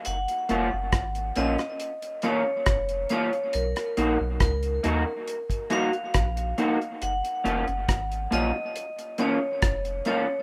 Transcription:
<<
  \new Staff \with { instrumentName = "Vibraphone" } { \time 4/4 \key fis \major \tempo 4 = 69 fis''4. dis''4 cis''4 cis''8 | ais'4 ais'4. eis''4. | fis''4. dis''4 cis''4 cis''8 | }
  \new Staff \with { instrumentName = "Clean electric guitar" } { \time 4/4 \key fis \major r8 <ais cis' eis'>8 r8 <ais cis' eis'>8 r8 <ais cis' eis'>8 r8 <ais cis' eis'>8 | r8 <ais dis' fis'>8 r8 <ais dis' fis'>8 r8 <ais dis' fis'>8 r8 <ais dis' fis'>8 | r8 <ais cis' eis'>8 r8 <ais cis' eis'>8 r8 <ais cis' eis'>8 r8 <ais cis' eis'>8 | }
  \new Staff \with { instrumentName = "Sub bass" } { \clef bass \time 4/4 \key fis \major fis,,16 r16 eis,,16 fis,,16 gis,,8 ais,,16 r4 r16 eis,,8 r8 | b,,16 r16 ais,,16 b,,16 cis,8 dis,16 r4 r16 ais,,8 r8 | fis,,16 r16 eis,,16 fis,,16 gis,,8 ais,,16 r4 r16 eis,,8 r8 | }
  \new DrumStaff \with { instrumentName = "Drums" } \drummode { \time 4/4 hh16 hh16 hh8 <hh bd ss>16 hh16 hh16 <hh ss>16 hh16 hh16 hh8 <hh bd ss>16 hh16 hh16 hh16 | hh16 <hh ss>16 hh8 <hh bd ss>16 hh16 hh8 hh16 <hh bd>16 hh16 hh16 <hh bd ss>16 hh16 hh16 hh16 | hh16 hh16 hh16 hh16 <hh bd ss>16 hh16 hh8 hh16 hh16 hh8 <hh bd ss>16 hh16 hh8 | }
>>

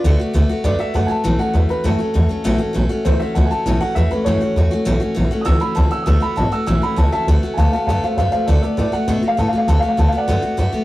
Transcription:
<<
  \new Staff \with { instrumentName = "Upright piano" } { \time 4/4 \key d \major \tempo 4 = 199 d''4. r8 d''8 e''8 fis''8 <gis'' a''>8~ | <gis'' a''>8 fis''8 e''8 b'8 a'2~ | a'4 r4 c''8 e''8 fis''8 <gis'' a''>8~ | <gis'' a''>8 fis''8 e''8 b'8 cis''2~ |
cis''4 r4 <ees''' e'''>8 b''8 a''8 e'''8 | <ees''' e'''>8 b''8 a''8 e'''8 e'''8 b''8 a''8 <e'' a''>8 | r4 <f'' gis'' a''>8 <f'' a''>8 <f'' a''>8 <c'' f''>8 <c'' f''>8 <c'' f''>8 | <a' d''>8 <a' d''>8 <a' d''>8 fis''8 \tuplet 3/2 { r4 f''8 a''8 f''8 f''8 } |
\tuplet 3/2 { a''8 f''8 f''8 a''8 f''8 <d'' fis''>8~ } <d'' fis''>4. r8 | }
  \new Staff \with { instrumentName = "Steel-string acoustic guitar" } { \time 4/4 \key d \major <d a b fis'>8 <a b fis'>8 <d a b fis'>8 <a b fis'>8 <d a b fis'>8 <a b fis'>8 <d a b fis'>8 <a b fis'>8 | <a, e a cis' fis'>8 <a cis' fis'>8 <e a cis' fis'>8 <a cis' fis'>8 <a, e a cis' fis'>8 <a cis' fis'>8 <e a cis' fis'>8 <a cis' fis'>8 | <a, e a cis' fis'>8 <a cis' fis'>8 <e a cis' fis'>8 <a cis' fis'>8 <a, e a cis' fis'>8 <a cis' fis'>8 <e a cis' fis'>8 <a cis' fis'>8 | <a, e a cis' fis'>8 <a cis' fis'>8 <e a cis' fis'>8 <a cis' fis'>8 <a, e a cis' fis'>8 <a cis' fis'>8 <e a cis' fis'>8 <a cis' fis'>8 |
<a, e a cis' fis'>8 <a cis' fis'>8 <e a cis' fis'>8 <a cis' fis'>8 <a, e a cis' fis'>8 <a cis' fis'>8 <e a cis' fis'>8 <a cis' fis'>8 | <d a b fis'>8 <a b fis'>8 <d a b fis'>8 <a b fis'>8 <a, e a cis' fis'>8 <a cis' fis'>8 <e a cis' fis'>8 <a cis' fis'>8 | <d a b fis'>8 <a b fis'>8 <d a b fis'>8 <a b fis'>8 <d a b fis'>8 <a b fis'>8 <d a b fis'>8 <a b fis'>8 | <d a b fis'>8 <a b fis'>8 <d a b fis'>8 <a b fis'>8 <d a b fis'>8 <a b fis'>8 <d a b fis'>8 <a b fis'>8 |
<d a b fis'>8 <a b fis'>8 <d a b fis'>8 <a b fis'>8 <d a b fis'>8 <a b fis'>8 <d a b fis'>8 <a b fis'>8 | }
  \new Staff \with { instrumentName = "Upright bass" } { \clef bass \time 4/4 \key d \major d,8 r8 d,8 r8 fis,8 r8 fis,8 r8 | a,,8 r8 e,8 r8 fis,8 r8 e,8 r8 | a,,8 r8 a,,8 r8 cis,8 r8 cis,8 r8 | a,,8 r8 e,8 r8 fis,8 r8 e,8 r8 |
a,,8 r8 a,,8 r8 cis,8 r8 cis,8 r8 | d,8 r8 gis,,8 r8 a,,8 r8 cis,8 r8 | d,8 r8 d,8 r8 fis,8 r8 fis,8 r8 | d,8 r8 a,8 r8 b,8 r8 a,8 r8 |
d,8 r8 d,8 r8 fis,8 r8 fis,8 r8 | }
>>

